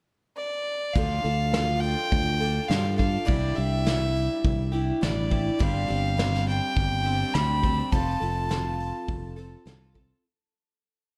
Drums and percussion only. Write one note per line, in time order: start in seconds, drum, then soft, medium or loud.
0.95 kick medium
0.95 open hi-hat medium
1.25 open hi-hat soft
1.53 snare loud
1.53 open hi-hat medium
1.83 open hi-hat soft
2.12 kick medium
2.12 open hi-hat medium
2.41 open hi-hat soft
2.70 snare medium
2.70 open hi-hat medium
2.99 kick medium
2.99 open hi-hat soft
3.28 kick medium
3.28 open hi-hat medium
3.58 open hi-hat soft
3.87 snare medium
4.16 open hi-hat soft
4.44 kick loud
4.44 open hi-hat medium
4.74 open hi-hat soft
5.02 snare loud
5.02 open hi-hat medium
5.31 kick medium
5.31 open hi-hat soft
5.60 kick loud
5.60 open hi-hat medium
5.90 open hi-hat soft
6.19 snare loud
6.19 open hi-hat medium
6.34 snare soft
6.48 open hi-hat soft
6.77 kick loud
6.77 open hi-hat medium
7.05 open hi-hat soft
7.34 snare loud
7.34 open hi-hat medium
7.63 kick medium
7.63 open hi-hat soft
7.92 kick loud
7.92 open hi-hat medium
8.22 open hi-hat soft
8.50 snare loud
8.50 open hi-hat medium
8.80 open hi-hat soft
9.08 kick loud
9.08 open hi-hat medium
9.38 open hi-hat soft
9.66 snare medium
9.66 open hi-hat medium
9.95 kick medium
9.95 open hi-hat soft